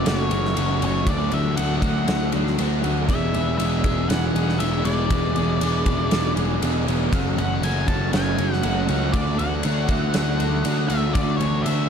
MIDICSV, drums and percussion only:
0, 0, Header, 1, 2, 480
1, 0, Start_track
1, 0, Tempo, 504202
1, 1021, Time_signature, 4, 2, 24, 8
1, 11319, End_track
2, 0, Start_track
2, 0, Title_t, "Drums"
2, 57, Note_on_c, 9, 51, 86
2, 66, Note_on_c, 9, 38, 98
2, 152, Note_off_c, 9, 51, 0
2, 161, Note_off_c, 9, 38, 0
2, 293, Note_on_c, 9, 51, 72
2, 389, Note_off_c, 9, 51, 0
2, 430, Note_on_c, 9, 38, 32
2, 525, Note_off_c, 9, 38, 0
2, 539, Note_on_c, 9, 51, 92
2, 635, Note_off_c, 9, 51, 0
2, 781, Note_on_c, 9, 51, 69
2, 877, Note_off_c, 9, 51, 0
2, 1016, Note_on_c, 9, 36, 105
2, 1018, Note_on_c, 9, 51, 95
2, 1111, Note_off_c, 9, 36, 0
2, 1113, Note_off_c, 9, 51, 0
2, 1252, Note_on_c, 9, 51, 65
2, 1348, Note_off_c, 9, 51, 0
2, 1498, Note_on_c, 9, 51, 101
2, 1593, Note_off_c, 9, 51, 0
2, 1734, Note_on_c, 9, 36, 86
2, 1737, Note_on_c, 9, 51, 75
2, 1829, Note_off_c, 9, 36, 0
2, 1832, Note_off_c, 9, 51, 0
2, 1977, Note_on_c, 9, 51, 90
2, 1986, Note_on_c, 9, 38, 108
2, 2072, Note_off_c, 9, 51, 0
2, 2082, Note_off_c, 9, 38, 0
2, 2211, Note_on_c, 9, 51, 72
2, 2307, Note_off_c, 9, 51, 0
2, 2349, Note_on_c, 9, 38, 33
2, 2444, Note_off_c, 9, 38, 0
2, 2461, Note_on_c, 9, 51, 85
2, 2556, Note_off_c, 9, 51, 0
2, 2702, Note_on_c, 9, 51, 64
2, 2797, Note_off_c, 9, 51, 0
2, 2939, Note_on_c, 9, 36, 112
2, 2944, Note_on_c, 9, 51, 88
2, 3034, Note_off_c, 9, 36, 0
2, 3039, Note_off_c, 9, 51, 0
2, 3182, Note_on_c, 9, 51, 61
2, 3277, Note_off_c, 9, 51, 0
2, 3423, Note_on_c, 9, 51, 88
2, 3519, Note_off_c, 9, 51, 0
2, 3655, Note_on_c, 9, 51, 68
2, 3658, Note_on_c, 9, 36, 84
2, 3751, Note_off_c, 9, 51, 0
2, 3753, Note_off_c, 9, 36, 0
2, 3901, Note_on_c, 9, 51, 88
2, 3911, Note_on_c, 9, 38, 104
2, 3997, Note_off_c, 9, 51, 0
2, 4006, Note_off_c, 9, 38, 0
2, 4149, Note_on_c, 9, 51, 66
2, 4244, Note_off_c, 9, 51, 0
2, 4273, Note_on_c, 9, 38, 32
2, 4368, Note_off_c, 9, 38, 0
2, 4380, Note_on_c, 9, 51, 88
2, 4475, Note_off_c, 9, 51, 0
2, 4618, Note_on_c, 9, 51, 67
2, 4713, Note_off_c, 9, 51, 0
2, 4859, Note_on_c, 9, 51, 92
2, 4860, Note_on_c, 9, 36, 106
2, 4955, Note_off_c, 9, 51, 0
2, 4956, Note_off_c, 9, 36, 0
2, 5099, Note_on_c, 9, 51, 62
2, 5195, Note_off_c, 9, 51, 0
2, 5343, Note_on_c, 9, 51, 93
2, 5438, Note_off_c, 9, 51, 0
2, 5579, Note_on_c, 9, 51, 70
2, 5581, Note_on_c, 9, 36, 89
2, 5674, Note_off_c, 9, 51, 0
2, 5676, Note_off_c, 9, 36, 0
2, 5818, Note_on_c, 9, 51, 87
2, 5828, Note_on_c, 9, 38, 103
2, 5914, Note_off_c, 9, 51, 0
2, 5923, Note_off_c, 9, 38, 0
2, 6063, Note_on_c, 9, 51, 70
2, 6158, Note_off_c, 9, 51, 0
2, 6306, Note_on_c, 9, 51, 93
2, 6402, Note_off_c, 9, 51, 0
2, 6552, Note_on_c, 9, 51, 66
2, 6647, Note_off_c, 9, 51, 0
2, 6785, Note_on_c, 9, 36, 109
2, 6789, Note_on_c, 9, 51, 91
2, 6880, Note_off_c, 9, 36, 0
2, 6884, Note_off_c, 9, 51, 0
2, 7029, Note_on_c, 9, 51, 58
2, 7124, Note_off_c, 9, 51, 0
2, 7266, Note_on_c, 9, 51, 86
2, 7361, Note_off_c, 9, 51, 0
2, 7501, Note_on_c, 9, 36, 82
2, 7502, Note_on_c, 9, 51, 65
2, 7597, Note_off_c, 9, 36, 0
2, 7597, Note_off_c, 9, 51, 0
2, 7740, Note_on_c, 9, 51, 78
2, 7750, Note_on_c, 9, 38, 103
2, 7836, Note_off_c, 9, 51, 0
2, 7845, Note_off_c, 9, 38, 0
2, 7982, Note_on_c, 9, 51, 70
2, 8077, Note_off_c, 9, 51, 0
2, 8118, Note_on_c, 9, 38, 32
2, 8213, Note_off_c, 9, 38, 0
2, 8218, Note_on_c, 9, 51, 81
2, 8314, Note_off_c, 9, 51, 0
2, 8459, Note_on_c, 9, 51, 60
2, 8554, Note_off_c, 9, 51, 0
2, 8698, Note_on_c, 9, 36, 103
2, 8698, Note_on_c, 9, 51, 85
2, 8793, Note_off_c, 9, 36, 0
2, 8793, Note_off_c, 9, 51, 0
2, 8940, Note_on_c, 9, 51, 65
2, 9035, Note_off_c, 9, 51, 0
2, 9169, Note_on_c, 9, 51, 98
2, 9264, Note_off_c, 9, 51, 0
2, 9410, Note_on_c, 9, 51, 70
2, 9414, Note_on_c, 9, 36, 86
2, 9505, Note_off_c, 9, 51, 0
2, 9509, Note_off_c, 9, 36, 0
2, 9650, Note_on_c, 9, 51, 96
2, 9660, Note_on_c, 9, 38, 103
2, 9746, Note_off_c, 9, 51, 0
2, 9755, Note_off_c, 9, 38, 0
2, 9899, Note_on_c, 9, 51, 72
2, 9995, Note_off_c, 9, 51, 0
2, 10136, Note_on_c, 9, 51, 90
2, 10231, Note_off_c, 9, 51, 0
2, 10374, Note_on_c, 9, 51, 72
2, 10469, Note_off_c, 9, 51, 0
2, 10616, Note_on_c, 9, 51, 93
2, 10617, Note_on_c, 9, 36, 110
2, 10711, Note_off_c, 9, 51, 0
2, 10712, Note_off_c, 9, 36, 0
2, 10857, Note_on_c, 9, 51, 72
2, 10953, Note_off_c, 9, 51, 0
2, 11098, Note_on_c, 9, 51, 88
2, 11193, Note_off_c, 9, 51, 0
2, 11319, End_track
0, 0, End_of_file